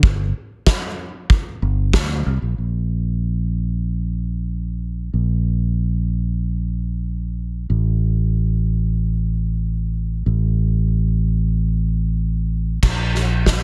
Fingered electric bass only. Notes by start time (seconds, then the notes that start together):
0.03 G1
1.62 G1
1.94 D2
2.26 C2
2.42 A#1
2.58 A#1
5.14 A#1
7.70 A1
10.26 A1
12.82 A#1